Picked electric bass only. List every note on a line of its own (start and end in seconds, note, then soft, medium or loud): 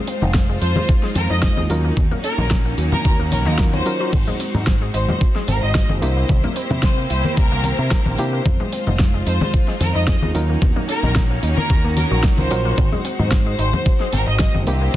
0.22 0.56 F1 loud
0.62 0.72 F2 loud
1.15 1.26 F2 loud
1.30 1.50 F2 medium
1.57 1.66 D#2 medium
1.70 1.90 D#2 medium
1.97 2.08 D#2 loud
2.38 2.73 A#1 loud
2.78 2.89 D#2 loud
3.05 3.16 D#2 medium
3.19 3.31 D#2 loud
3.32 3.46 A#1 loud
3.46 3.81 D#2 loud
4.13 4.24 G#1 loud
4.54 4.89 G#2 loud
4.94 5.05 G#1 medium
5.48 5.59 G#1 loud
5.63 5.82 G#1 medium
5.90 5.99 F#1 medium
6.02 6.23 C2 medium
6.29 6.40 C2 loud
6.71 7.05 C3 loud
7.10 7.21 C2 loud
7.37 7.48 C2 medium
7.52 7.71 C2 loud
7.79 7.88 C3 loud
8.06 8.15 A#1 loud
8.18 8.39 C3 medium
8.46 8.56 F2 loud
8.87 9.21 F1 loud
9.27 9.37 F2 loud
9.81 9.91 F2 loud
9.95 10.15 F2 medium
10.22 10.31 D#2 medium
10.35 10.55 D#2 medium
10.62 10.73 D#2 loud
11.03 11.38 A#1 loud
11.43 11.54 D#2 medium
11.70 11.81 D#2 medium
11.84 12.04 D#2 loud
12.11 12.21 A#1 loud
12.38 12.48 C#2 medium
12.51 12.71 A#1 medium
12.78 12.89 G#1 loud
13.19 13.54 G#2 loud
13.59 13.70 G#1 loud
14.13 14.24 G#1 loud
14.27 14.47 G#1 medium
14.54 14.64 F#1 medium
14.67 14.87 C2 medium